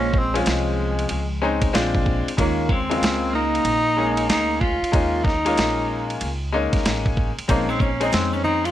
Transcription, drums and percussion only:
0.13 kick
0.35 ride
0.46 snare, hi-hat pedal, ride
0.99 ride
1.09 ride
1.62 kick, ride
1.75 snare, hi-hat pedal, ride
1.95 kick
2.06 kick
2.28 ride
2.38 kick, ride
2.69 kick
2.91 ride
3.03 snare, hi-hat pedal, ride
3.55 ride
3.65 ride
4.17 ride
4.30 snare, hi-hat pedal, ride
4.61 kick
4.84 ride
4.93 kick, ride
5.25 kick, snare
5.46 ride
5.58 snare, hi-hat pedal, ride
6.10 ride
6.21 ride
6.73 kick, snare, ride
6.85 snare, hi-hat pedal, ride
7.06 kick
7.17 kick
7.39 ride
7.49 kick, ride, shaker
7.69 shaker
7.80 kick, shaker
8.01 ride, shaker
8.12 snare, hi-hat pedal, ride, low conga, shaker
8.33 high conga, shaker
8.44 high conga, low conga, shaker
8.65 ride, shaker

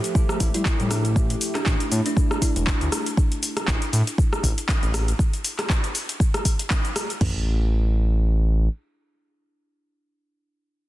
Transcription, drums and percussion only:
0.04 closed hi-hat, shaker
0.15 kick, shaker
0.29 cross-stick, shaker
0.40 kick, open hi-hat, shaker
0.54 closed hi-hat, shaker
0.66 kick, clap, shaker
0.80 closed hi-hat, shaker
0.91 cross-stick, open hi-hat, shaker
1.05 closed hi-hat, shaker
1.16 kick, shaker
1.30 closed hi-hat, shaker
1.41 open hi-hat, shaker
1.55 cross-stick, clap, closed hi-hat, shaker
1.66 kick, clap, shaker
1.80 closed hi-hat, shaker
1.92 open hi-hat, shaker
2.06 closed hi-hat, shaker
2.17 kick, shaker
2.31 cross-stick, shaker
2.42 kick, open hi-hat, shaker
2.56 closed hi-hat, shaker
2.67 kick, clap, shaker
2.81 closed hi-hat, shaker
2.92 cross-stick, open hi-hat, shaker
3.06 closed hi-hat, shaker
3.17 kick, shaker
3.32 closed hi-hat, shaker
3.43 open hi-hat, shaker
3.57 cross-stick, closed hi-hat, shaker
3.68 kick, clap, shaker
3.82 closed hi-hat, shaker
3.93 open hi-hat, shaker
4.07 closed hi-hat, shaker
4.18 kick, shaker
4.33 cross-stick, shaker
4.43 kick, open hi-hat, shaker
4.58 closed hi-hat, shaker
4.69 kick, clap, shaker
4.83 closed hi-hat, shaker
4.94 cross-stick, open hi-hat, shaker
5.08 closed hi-hat, shaker
5.19 kick, shaker
5.33 closed hi-hat, shaker
5.44 open hi-hat, shaker
5.59 cross-stick, clap, closed hi-hat, shaker
5.70 kick, clap, shaker
5.84 closed hi-hat, shaker
5.95 open hi-hat, shaker
6.09 closed hi-hat, shaker
6.20 kick, shaker
6.34 cross-stick, closed hi-hat, shaker
6.45 kick, open hi-hat, shaker
6.59 closed hi-hat, shaker
6.70 kick, clap, shaker
6.85 closed hi-hat, shaker
6.96 cross-stick, open hi-hat, shaker
7.10 closed hi-hat, shaker
7.21 kick, floor tom, crash

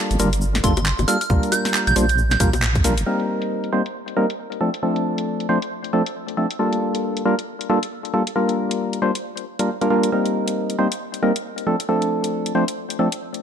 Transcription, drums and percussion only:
0.11 closed hi-hat, shaker
0.19 open hi-hat, shaker
0.33 closed hi-hat, shaker
0.41 shaker
0.55 snare, closed hi-hat, shaker
0.64 kick, open hi-hat, shaker
0.77 closed hi-hat, high bongo, shaker
0.85 clap, shaker
0.99 closed hi-hat, high bongo, shaker
1.08 snare, open hi-hat, shaker
1.21 closed hi-hat, shaker
1.30 kick, shaker
1.43 closed hi-hat, shaker
1.52 open hi-hat, high bongo, shaker
1.65 snare, closed hi-hat, shaker
1.74 clap, shaker
1.87 closed hi-hat, shaker
1.96 open hi-hat, shaker
2.09 closed hi-hat, shaker
2.18 shaker
2.31 snare, closed hi-hat, shaker
2.40 kick, open hi-hat, shaker
2.53 closed hi-hat, high bongo, shaker
2.62 clap, shaker
2.75 kick, closed hi-hat, shaker
2.84 snare, open hi-hat, shaker
2.98 closed hi-hat, shaker
3.20 closed hi-hat
3.42 closed hi-hat
3.64 closed hi-hat
3.86 closed hi-hat
4.08 closed hi-hat
4.30 closed hi-hat
4.52 closed hi-hat
4.74 closed hi-hat
4.96 closed hi-hat
5.18 closed hi-hat
5.40 closed hi-hat
5.62 closed hi-hat
5.84 closed hi-hat
6.06 closed hi-hat
6.28 closed hi-hat
6.51 closed hi-hat
6.73 closed hi-hat
6.95 closed hi-hat
7.17 closed hi-hat
7.39 closed hi-hat
7.61 closed hi-hat
7.83 closed hi-hat
8.05 closed hi-hat
8.27 closed hi-hat
8.49 closed hi-hat
8.71 closed hi-hat
8.93 closed hi-hat
9.15 closed hi-hat
9.37 closed hi-hat
9.59 closed hi-hat
9.81 closed hi-hat
10.03 closed hi-hat
10.26 closed hi-hat
10.48 closed hi-hat
10.70 closed hi-hat
10.92 closed hi-hat
11.14 closed hi-hat
11.36 closed hi-hat
11.58 closed hi-hat
11.80 closed hi-hat
12.02 closed hi-hat
12.24 closed hi-hat
12.46 closed hi-hat
12.68 closed hi-hat
12.90 closed hi-hat
13.12 closed hi-hat
13.34 closed hi-hat

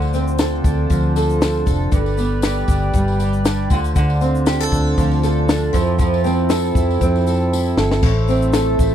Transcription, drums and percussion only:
0.02 tambourine
0.13 tambourine, shaker
0.28 shaker
0.38 snare, tambourine, shaker
0.64 kick, tambourine, shaker
0.90 kick, tambourine, shaker
1.16 snare, tambourine, shaker
1.30 shaker
1.41 snare, tambourine, shaker
1.67 kick, tambourine, shaker
1.92 kick, tambourine, shaker
2.06 tambourine
2.17 tambourine, shaker
2.42 snare, tambourine, shaker
2.68 kick, tambourine, shaker
2.93 kick, tambourine, shaker
3.08 tambourine
3.20 tambourine, shaker
3.33 shaker
3.45 snare, tambourine, shaker
3.70 kick, tambourine, shaker
3.84 tambourine, shaker
3.96 kick, tambourine, shaker
4.10 tambourine
4.21 tambourine, shaker
4.35 shaker
4.46 snare, tambourine, shaker
4.72 kick, tambourine, shaker
4.87 tambourine
4.98 kick, tambourine, shaker
5.11 tambourine
5.23 snare, tambourine, shaker
5.49 snare, tambourine, shaker
5.74 kick, tambourine, shaker
5.99 kick, tambourine, shaker
6.14 tambourine
6.24 tambourine, shaker
6.49 snare, tambourine, shaker
6.75 kick, tambourine, shaker
6.91 tambourine
7.01 kick, tambourine, shaker
7.16 tambourine
7.27 tambourine, shaker
7.53 tambourine
7.78 snare, tambourine
7.91 snare, tambourine
8.02 kick, crash, tambourine
8.28 tambourine, shaker
8.42 shaker
8.53 snare, tambourine, shaker
8.79 kick, tambourine, shaker

